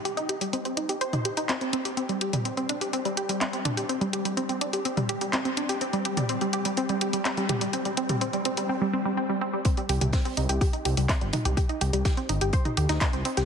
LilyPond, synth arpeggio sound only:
\new Staff \with { instrumentName = "Synth arpeggio sound" } { \time 4/4 \key c \minor \tempo 4 = 125 g'16 ees'16 g'16 g16 c'16 c'16 ees'16 g'16 c''16 ees'16 g'16 ees'16 c'16 c'16 c'16 g'16 | c'16 g16 g'16 g16 c'16 c'16 d'16 g'16 c'16 g16 g'16 g16 c'16 c'16 d'16 g'16 | c'16 g16 g'16 g16 c'16 c'16 d'16 g'16 c'16 g16 g'16 g16 c'16 c'16 d'16 g'16 | c'16 g16 g'16 g16 c'16 g16 g'16 g16 c'16 g16 g'16 g16 c'16 g16 g'16 g16 |
c'16 g16 c'16 g16 c'16 g16 c'16 g16 c'16 g16 c'16 g16 c'16 g16 c'16 g16 | <c' c''>16 <g g'>16 <g' g''>16 <g g'>16 <c' c''>16 <c' c''>16 <ees' ees''>16 <g' g''>16 <g' g''>16 <ees' ees''>16 <g' g''>16 <g g'>16 <c' c''>16 <g g'>16 <ees' ees''>16 <g' g''>16 | <g' g''>16 <ees' ees''>16 <g' g''>16 <g g'>16 <g' g''>16 <c' c''>16 <ees' ees''>16 <g' g''>16 <c'' c'''>16 <ees' ees''>16 <g' g''>16 <ees' ees''>16 <c' c''>16 <c' c''>16 <c' c''>16 <g' g''>16 | }